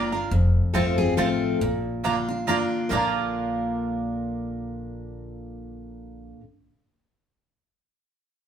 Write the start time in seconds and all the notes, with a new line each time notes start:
Already playing: G1 D3 A#3 D4 F4 A#4
0.12 D4 F4 A#4
0.31 F1 F2
0.74 G1 F3 A3 C4 F4 A4 C5 A5
0.98 C4 F4 G#4
1.17 A1 F3 A3 C4 F4 A4 C5 A5
1.61 A#1 A#2
2.04 D3 A#3 D4 F4 D5 A#5
2.29 D4 F4
2.47 D3 A#3 D4 F4 D5 A#5
2.89 A#1 A#2 D3 A#3 D4 F4 A#4 D5 A#5
2.95 F4 A#4